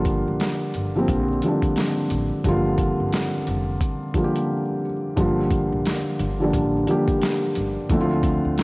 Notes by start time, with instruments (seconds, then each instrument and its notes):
Already playing: upright bass G1, felt piano D3 F3 G3 A#3 F4
0.05 kick, closed hi-hat
0.28 upright bass A#1
0.40 snare, closed hi-hat
0.74 upright bass G1, closed hi-hat
0.95 felt piano D3 F3 G3 A#3 C4
1.08 upright bass A#1, kick, closed hi-hat
1.42 felt piano D3 F3 G3, closed hi-hat
1.46 felt piano A#3 D4
1.62 kick, closed hi-hat
1.76 snare, closed hi-hat
2.10 upright bass A1, closed hi-hat
2.44 upright bass G1, felt piano D3 F3 G3 A#3, kick, closed hi-hat
2.49 felt piano F4
2.78 kick, closed hi-hat
3.00 upright bass G1
3.12 snare, closed hi-hat
3.47 upright bass F1, closed hi-hat
3.81 kick, closed hi-hat
4.14 felt piano D3 F3 G3 A#3 F4, kick, closed hi-hat
4.24 felt piano G4
4.36 closed hi-hat
5.16 upright bass G1, felt piano D3 F3 G3 A#3 F4, kick, closed hi-hat
5.51 kick, closed hi-hat
5.72 upright bass A#1
5.86 snare, closed hi-hat
6.20 upright bass G1, closed hi-hat
6.40 felt piano D3 F3 G3 A#3 D4
6.53 upright bass A1, kick, closed hi-hat
6.87 felt piano D3 F3 G3 A#3 G4, closed hi-hat
7.08 kick, closed hi-hat
7.21 snare, closed hi-hat
7.55 upright bass G1, closed hi-hat
7.90 upright bass D2, felt piano D3 F3 A3 C4, kick, closed hi-hat
7.94 felt piano E4
8.01 felt piano F4
8.23 kick, closed hi-hat
8.45 upright bass D2
8.58 snare, closed hi-hat